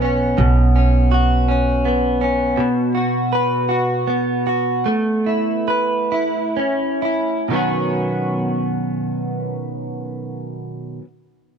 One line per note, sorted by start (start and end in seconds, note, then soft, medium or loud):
0.00 0.34 B1 medium
0.00 0.36 B2 medium
0.00 1.85 B3 soft
0.00 0.74 C#4 soft
0.00 1.11 F#4 medium
0.38 2.53 B1 medium
0.38 2.56 B2 medium
0.76 1.47 C#4 soft
1.11 2.95 F#4 soft
1.48 2.20 C#4 soft
1.85 4.07 B3 soft
2.21 2.65 C#4 soft
2.57 4.85 B2 medium
2.95 3.68 F#4 soft
3.33 5.67 B4 soft
3.69 4.46 F#4 soft
4.07 6.56 B3 soft
4.47 4.94 F#4 soft
4.86 7.51 A3 medium
5.26 6.11 E4 soft
5.68 7.55 B4 soft
6.12 7.01 E4 soft
6.57 7.52 C#4 soft
7.02 7.53 E4 soft
7.48 10.98 B2 soft
7.48 11.00 D#3 soft
7.48 11.02 F#3 medium
7.53 11.03 B3 medium
7.53 11.04 C#4 medium
7.53 11.05 F#4 soft